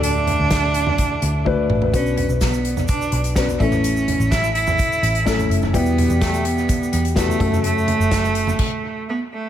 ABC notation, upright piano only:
X:1
M:4/4
L:1/8
Q:1/4=126
K:Bm
V:1 name="Upright piano"
[A,DFA]3 z3 [A,DFB]2 | [B,DFB]4 z2 [B,DFB] [A,CEA]- | [A,CEA]3 z3 [A,CEA]2 | [G,B,EG]4 z2 [G,B,EF] [A,CFA]- |
[A,CFA]3 z4 z |]
V:2 name="Upright piano" clef=bass
A,,2 z6 | z8 | z8 | B,,3 z4 C,- |
C,2 z6 |]